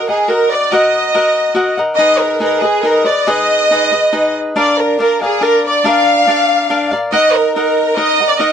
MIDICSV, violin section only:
0, 0, Header, 1, 2, 480
1, 0, Start_track
1, 0, Key_signature, -6, "minor"
1, 0, Tempo, 427655
1, 791, Time_signature, 3, 2, 24, 8
1, 9567, End_track
2, 0, Start_track
2, 0, Title_t, "Violin section"
2, 0, Program_c, 0, 48
2, 113, Note_on_c, 0, 68, 65
2, 331, Note_off_c, 0, 68, 0
2, 356, Note_on_c, 0, 70, 73
2, 577, Note_off_c, 0, 70, 0
2, 589, Note_on_c, 0, 74, 70
2, 809, Note_off_c, 0, 74, 0
2, 818, Note_on_c, 0, 75, 68
2, 2001, Note_off_c, 0, 75, 0
2, 2194, Note_on_c, 0, 75, 82
2, 2433, Note_off_c, 0, 75, 0
2, 2468, Note_on_c, 0, 70, 74
2, 2695, Note_off_c, 0, 70, 0
2, 2709, Note_on_c, 0, 70, 76
2, 2930, Note_off_c, 0, 70, 0
2, 2934, Note_on_c, 0, 68, 78
2, 3176, Note_off_c, 0, 68, 0
2, 3181, Note_on_c, 0, 70, 78
2, 3425, Note_off_c, 0, 70, 0
2, 3436, Note_on_c, 0, 74, 68
2, 3670, Note_off_c, 0, 74, 0
2, 3679, Note_on_c, 0, 75, 81
2, 4896, Note_off_c, 0, 75, 0
2, 5133, Note_on_c, 0, 74, 68
2, 5360, Note_off_c, 0, 74, 0
2, 5380, Note_on_c, 0, 70, 62
2, 5600, Note_off_c, 0, 70, 0
2, 5613, Note_on_c, 0, 70, 65
2, 5840, Note_off_c, 0, 70, 0
2, 5887, Note_on_c, 0, 68, 74
2, 6109, Note_off_c, 0, 68, 0
2, 6112, Note_on_c, 0, 70, 87
2, 6344, Note_off_c, 0, 70, 0
2, 6374, Note_on_c, 0, 74, 73
2, 6575, Note_off_c, 0, 74, 0
2, 6595, Note_on_c, 0, 77, 90
2, 7775, Note_off_c, 0, 77, 0
2, 8007, Note_on_c, 0, 75, 86
2, 8226, Note_off_c, 0, 75, 0
2, 8243, Note_on_c, 0, 70, 76
2, 8454, Note_off_c, 0, 70, 0
2, 8467, Note_on_c, 0, 70, 76
2, 8915, Note_off_c, 0, 70, 0
2, 8947, Note_on_c, 0, 75, 91
2, 9310, Note_off_c, 0, 75, 0
2, 9317, Note_on_c, 0, 74, 73
2, 9434, Note_off_c, 0, 74, 0
2, 9434, Note_on_c, 0, 75, 75
2, 9567, Note_off_c, 0, 75, 0
2, 9567, End_track
0, 0, End_of_file